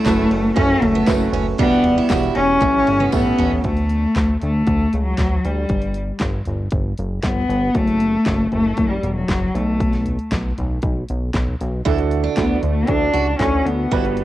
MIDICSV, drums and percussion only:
0, 0, Header, 1, 2, 480
1, 0, Start_track
1, 0, Key_signature, 2, "major"
1, 0, Tempo, 513259
1, 1488, Time_signature, 4, 2, 24, 8
1, 13318, End_track
2, 0, Start_track
2, 0, Title_t, "Drums"
2, 50, Note_on_c, 9, 51, 73
2, 52, Note_on_c, 9, 54, 84
2, 54, Note_on_c, 9, 38, 112
2, 55, Note_on_c, 9, 36, 116
2, 62, Note_on_c, 9, 39, 96
2, 143, Note_off_c, 9, 51, 0
2, 145, Note_off_c, 9, 54, 0
2, 147, Note_off_c, 9, 38, 0
2, 149, Note_off_c, 9, 36, 0
2, 155, Note_off_c, 9, 39, 0
2, 291, Note_on_c, 9, 51, 59
2, 385, Note_off_c, 9, 51, 0
2, 523, Note_on_c, 9, 51, 72
2, 533, Note_on_c, 9, 36, 122
2, 616, Note_off_c, 9, 51, 0
2, 626, Note_off_c, 9, 36, 0
2, 771, Note_on_c, 9, 43, 74
2, 771, Note_on_c, 9, 51, 66
2, 864, Note_off_c, 9, 43, 0
2, 864, Note_off_c, 9, 51, 0
2, 891, Note_on_c, 9, 51, 42
2, 984, Note_off_c, 9, 51, 0
2, 1001, Note_on_c, 9, 51, 83
2, 1006, Note_on_c, 9, 54, 95
2, 1007, Note_on_c, 9, 38, 104
2, 1008, Note_on_c, 9, 36, 125
2, 1016, Note_on_c, 9, 39, 83
2, 1095, Note_off_c, 9, 51, 0
2, 1099, Note_off_c, 9, 54, 0
2, 1101, Note_off_c, 9, 36, 0
2, 1101, Note_off_c, 9, 38, 0
2, 1109, Note_off_c, 9, 39, 0
2, 1247, Note_on_c, 9, 43, 73
2, 1251, Note_on_c, 9, 51, 64
2, 1341, Note_off_c, 9, 43, 0
2, 1345, Note_off_c, 9, 51, 0
2, 1482, Note_on_c, 9, 51, 65
2, 1488, Note_on_c, 9, 36, 105
2, 1575, Note_off_c, 9, 51, 0
2, 1582, Note_off_c, 9, 36, 0
2, 1606, Note_on_c, 9, 38, 37
2, 1700, Note_off_c, 9, 38, 0
2, 1721, Note_on_c, 9, 51, 60
2, 1725, Note_on_c, 9, 43, 66
2, 1814, Note_off_c, 9, 51, 0
2, 1818, Note_off_c, 9, 43, 0
2, 1960, Note_on_c, 9, 51, 76
2, 1961, Note_on_c, 9, 54, 88
2, 1964, Note_on_c, 9, 38, 121
2, 1969, Note_on_c, 9, 36, 110
2, 1973, Note_on_c, 9, 39, 97
2, 2054, Note_off_c, 9, 51, 0
2, 2054, Note_off_c, 9, 54, 0
2, 2058, Note_off_c, 9, 38, 0
2, 2062, Note_off_c, 9, 36, 0
2, 2066, Note_off_c, 9, 39, 0
2, 2088, Note_on_c, 9, 51, 41
2, 2182, Note_off_c, 9, 51, 0
2, 2199, Note_on_c, 9, 51, 56
2, 2293, Note_off_c, 9, 51, 0
2, 2436, Note_on_c, 9, 51, 77
2, 2442, Note_on_c, 9, 48, 59
2, 2447, Note_on_c, 9, 36, 117
2, 2530, Note_off_c, 9, 51, 0
2, 2535, Note_off_c, 9, 48, 0
2, 2541, Note_off_c, 9, 36, 0
2, 2564, Note_on_c, 9, 48, 60
2, 2657, Note_off_c, 9, 48, 0
2, 2683, Note_on_c, 9, 51, 68
2, 2777, Note_off_c, 9, 51, 0
2, 2805, Note_on_c, 9, 47, 68
2, 2805, Note_on_c, 9, 51, 40
2, 2898, Note_off_c, 9, 47, 0
2, 2898, Note_off_c, 9, 51, 0
2, 2920, Note_on_c, 9, 54, 98
2, 2922, Note_on_c, 9, 51, 84
2, 2925, Note_on_c, 9, 36, 120
2, 2926, Note_on_c, 9, 45, 90
2, 3013, Note_off_c, 9, 54, 0
2, 3015, Note_off_c, 9, 51, 0
2, 3019, Note_off_c, 9, 36, 0
2, 3020, Note_off_c, 9, 45, 0
2, 3170, Note_on_c, 9, 43, 111
2, 3174, Note_on_c, 9, 51, 62
2, 3263, Note_off_c, 9, 43, 0
2, 3268, Note_off_c, 9, 51, 0
2, 3285, Note_on_c, 9, 43, 94
2, 3378, Note_off_c, 9, 43, 0
2, 3403, Note_on_c, 9, 42, 72
2, 3408, Note_on_c, 9, 36, 85
2, 3497, Note_off_c, 9, 42, 0
2, 3502, Note_off_c, 9, 36, 0
2, 3523, Note_on_c, 9, 42, 46
2, 3616, Note_off_c, 9, 42, 0
2, 3642, Note_on_c, 9, 42, 65
2, 3735, Note_off_c, 9, 42, 0
2, 3885, Note_on_c, 9, 42, 77
2, 3889, Note_on_c, 9, 38, 97
2, 3890, Note_on_c, 9, 36, 95
2, 3897, Note_on_c, 9, 39, 78
2, 3978, Note_off_c, 9, 42, 0
2, 3982, Note_off_c, 9, 38, 0
2, 3984, Note_off_c, 9, 36, 0
2, 3991, Note_off_c, 9, 39, 0
2, 4130, Note_on_c, 9, 42, 61
2, 4132, Note_on_c, 9, 43, 54
2, 4223, Note_off_c, 9, 42, 0
2, 4225, Note_off_c, 9, 43, 0
2, 4364, Note_on_c, 9, 42, 73
2, 4371, Note_on_c, 9, 36, 98
2, 4458, Note_off_c, 9, 42, 0
2, 4464, Note_off_c, 9, 36, 0
2, 4609, Note_on_c, 9, 42, 71
2, 4702, Note_off_c, 9, 42, 0
2, 4842, Note_on_c, 9, 42, 82
2, 4846, Note_on_c, 9, 36, 99
2, 4847, Note_on_c, 9, 38, 93
2, 4856, Note_on_c, 9, 39, 76
2, 4935, Note_off_c, 9, 42, 0
2, 4940, Note_off_c, 9, 36, 0
2, 4941, Note_off_c, 9, 38, 0
2, 4949, Note_off_c, 9, 39, 0
2, 4971, Note_on_c, 9, 43, 60
2, 5065, Note_off_c, 9, 43, 0
2, 5094, Note_on_c, 9, 42, 68
2, 5187, Note_off_c, 9, 42, 0
2, 5321, Note_on_c, 9, 42, 73
2, 5327, Note_on_c, 9, 36, 84
2, 5414, Note_off_c, 9, 42, 0
2, 5421, Note_off_c, 9, 36, 0
2, 5440, Note_on_c, 9, 42, 49
2, 5533, Note_off_c, 9, 42, 0
2, 5557, Note_on_c, 9, 42, 67
2, 5650, Note_off_c, 9, 42, 0
2, 5792, Note_on_c, 9, 42, 77
2, 5796, Note_on_c, 9, 38, 101
2, 5805, Note_on_c, 9, 39, 78
2, 5806, Note_on_c, 9, 36, 103
2, 5886, Note_off_c, 9, 42, 0
2, 5890, Note_off_c, 9, 38, 0
2, 5898, Note_off_c, 9, 39, 0
2, 5899, Note_off_c, 9, 36, 0
2, 6036, Note_on_c, 9, 42, 60
2, 6038, Note_on_c, 9, 43, 59
2, 6129, Note_off_c, 9, 42, 0
2, 6131, Note_off_c, 9, 43, 0
2, 6271, Note_on_c, 9, 42, 78
2, 6285, Note_on_c, 9, 36, 104
2, 6365, Note_off_c, 9, 42, 0
2, 6378, Note_off_c, 9, 36, 0
2, 6522, Note_on_c, 9, 42, 72
2, 6616, Note_off_c, 9, 42, 0
2, 6760, Note_on_c, 9, 42, 83
2, 6764, Note_on_c, 9, 36, 105
2, 6765, Note_on_c, 9, 38, 99
2, 6774, Note_on_c, 9, 39, 75
2, 6853, Note_off_c, 9, 42, 0
2, 6857, Note_off_c, 9, 36, 0
2, 6859, Note_off_c, 9, 38, 0
2, 6867, Note_off_c, 9, 39, 0
2, 6883, Note_on_c, 9, 43, 60
2, 6977, Note_off_c, 9, 43, 0
2, 7015, Note_on_c, 9, 42, 70
2, 7109, Note_off_c, 9, 42, 0
2, 7246, Note_on_c, 9, 42, 71
2, 7248, Note_on_c, 9, 36, 94
2, 7339, Note_off_c, 9, 42, 0
2, 7341, Note_off_c, 9, 36, 0
2, 7365, Note_on_c, 9, 42, 47
2, 7458, Note_off_c, 9, 42, 0
2, 7484, Note_on_c, 9, 42, 68
2, 7577, Note_off_c, 9, 42, 0
2, 7722, Note_on_c, 9, 42, 78
2, 7726, Note_on_c, 9, 38, 98
2, 7729, Note_on_c, 9, 36, 99
2, 7734, Note_on_c, 9, 39, 85
2, 7815, Note_off_c, 9, 42, 0
2, 7819, Note_off_c, 9, 38, 0
2, 7822, Note_off_c, 9, 36, 0
2, 7828, Note_off_c, 9, 39, 0
2, 7968, Note_on_c, 9, 42, 58
2, 7970, Note_on_c, 9, 43, 60
2, 8062, Note_off_c, 9, 42, 0
2, 8064, Note_off_c, 9, 43, 0
2, 8203, Note_on_c, 9, 42, 75
2, 8210, Note_on_c, 9, 36, 95
2, 8296, Note_off_c, 9, 42, 0
2, 8303, Note_off_c, 9, 36, 0
2, 8449, Note_on_c, 9, 42, 75
2, 8543, Note_off_c, 9, 42, 0
2, 8686, Note_on_c, 9, 36, 104
2, 8686, Note_on_c, 9, 42, 84
2, 8691, Note_on_c, 9, 38, 97
2, 8700, Note_on_c, 9, 39, 83
2, 8779, Note_off_c, 9, 42, 0
2, 8780, Note_off_c, 9, 36, 0
2, 8785, Note_off_c, 9, 38, 0
2, 8793, Note_off_c, 9, 39, 0
2, 8805, Note_on_c, 9, 43, 62
2, 8898, Note_off_c, 9, 43, 0
2, 8935, Note_on_c, 9, 42, 67
2, 9028, Note_off_c, 9, 42, 0
2, 9170, Note_on_c, 9, 36, 92
2, 9171, Note_on_c, 9, 42, 73
2, 9263, Note_off_c, 9, 36, 0
2, 9265, Note_off_c, 9, 42, 0
2, 9289, Note_on_c, 9, 42, 45
2, 9292, Note_on_c, 9, 38, 31
2, 9383, Note_off_c, 9, 42, 0
2, 9385, Note_off_c, 9, 38, 0
2, 9406, Note_on_c, 9, 42, 68
2, 9410, Note_on_c, 9, 43, 59
2, 9500, Note_off_c, 9, 42, 0
2, 9504, Note_off_c, 9, 43, 0
2, 9529, Note_on_c, 9, 42, 42
2, 9622, Note_off_c, 9, 42, 0
2, 9646, Note_on_c, 9, 42, 79
2, 9650, Note_on_c, 9, 36, 94
2, 9650, Note_on_c, 9, 38, 101
2, 9659, Note_on_c, 9, 39, 78
2, 9740, Note_off_c, 9, 42, 0
2, 9743, Note_off_c, 9, 36, 0
2, 9744, Note_off_c, 9, 38, 0
2, 9752, Note_off_c, 9, 39, 0
2, 9893, Note_on_c, 9, 42, 57
2, 9895, Note_on_c, 9, 43, 60
2, 9987, Note_off_c, 9, 42, 0
2, 9988, Note_off_c, 9, 43, 0
2, 10120, Note_on_c, 9, 42, 78
2, 10128, Note_on_c, 9, 36, 106
2, 10213, Note_off_c, 9, 42, 0
2, 10221, Note_off_c, 9, 36, 0
2, 10368, Note_on_c, 9, 42, 74
2, 10461, Note_off_c, 9, 42, 0
2, 10602, Note_on_c, 9, 42, 83
2, 10606, Note_on_c, 9, 36, 104
2, 10608, Note_on_c, 9, 38, 98
2, 10616, Note_on_c, 9, 39, 77
2, 10696, Note_off_c, 9, 42, 0
2, 10699, Note_off_c, 9, 36, 0
2, 10702, Note_off_c, 9, 38, 0
2, 10710, Note_off_c, 9, 39, 0
2, 10725, Note_on_c, 9, 43, 61
2, 10819, Note_off_c, 9, 43, 0
2, 10853, Note_on_c, 9, 42, 71
2, 10947, Note_off_c, 9, 42, 0
2, 11089, Note_on_c, 9, 36, 87
2, 11091, Note_on_c, 9, 42, 72
2, 11183, Note_off_c, 9, 36, 0
2, 11184, Note_off_c, 9, 42, 0
2, 11207, Note_on_c, 9, 42, 51
2, 11301, Note_off_c, 9, 42, 0
2, 11328, Note_on_c, 9, 42, 69
2, 11421, Note_off_c, 9, 42, 0
2, 11563, Note_on_c, 9, 42, 75
2, 11567, Note_on_c, 9, 38, 95
2, 11571, Note_on_c, 9, 36, 100
2, 11576, Note_on_c, 9, 39, 82
2, 11657, Note_off_c, 9, 42, 0
2, 11661, Note_off_c, 9, 38, 0
2, 11664, Note_off_c, 9, 36, 0
2, 11669, Note_off_c, 9, 39, 0
2, 11810, Note_on_c, 9, 42, 59
2, 11812, Note_on_c, 9, 43, 59
2, 11904, Note_off_c, 9, 42, 0
2, 11905, Note_off_c, 9, 43, 0
2, 12040, Note_on_c, 9, 42, 79
2, 12050, Note_on_c, 9, 36, 101
2, 12134, Note_off_c, 9, 42, 0
2, 12143, Note_off_c, 9, 36, 0
2, 12292, Note_on_c, 9, 42, 78
2, 12385, Note_off_c, 9, 42, 0
2, 12529, Note_on_c, 9, 36, 111
2, 12529, Note_on_c, 9, 42, 87
2, 12534, Note_on_c, 9, 38, 94
2, 12543, Note_on_c, 9, 39, 78
2, 12622, Note_off_c, 9, 36, 0
2, 12622, Note_off_c, 9, 42, 0
2, 12628, Note_off_c, 9, 38, 0
2, 12636, Note_off_c, 9, 39, 0
2, 12651, Note_on_c, 9, 43, 57
2, 12744, Note_off_c, 9, 43, 0
2, 12780, Note_on_c, 9, 42, 72
2, 12874, Note_off_c, 9, 42, 0
2, 13011, Note_on_c, 9, 42, 75
2, 13014, Note_on_c, 9, 36, 97
2, 13104, Note_off_c, 9, 42, 0
2, 13108, Note_off_c, 9, 36, 0
2, 13137, Note_on_c, 9, 42, 50
2, 13230, Note_off_c, 9, 42, 0
2, 13250, Note_on_c, 9, 42, 65
2, 13318, Note_off_c, 9, 42, 0
2, 13318, End_track
0, 0, End_of_file